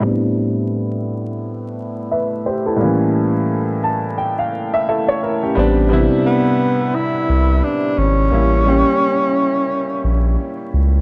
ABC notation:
X:1
M:4/4
L:1/16
Q:"Swing 16ths" 1/4=87
K:C
V:1 name="Upright piano"
z12 [Be]2 [Gc] [EA]- | [EA] z4 z a2 g f2 e [EAe] ^c [E_B] [^CG]- | [^CG] z12 z3 | z16 |]
V:2 name="Upright piano"
[A,,G,B,CDE]16 | [A,,E,G,_B,^C]12 z4 | [G,B,CD]2 [C,G,B,E]6 z8 | [G,_B,^CE]2 [G,B,CG]6 z8 |]
V:3 name="Tenor saxophone"
z16 | z16 | z4 B,4 E4 D2 ^C2- | ^C12- C2 z2 |]
V:4 name="Sub bass" clef=bass
z16 | z16 | A,,,3 z6 z C,,2 z2 ^G,,,2 | A,,,3 z6 z _B,,,2 z2 ^C,,2 |]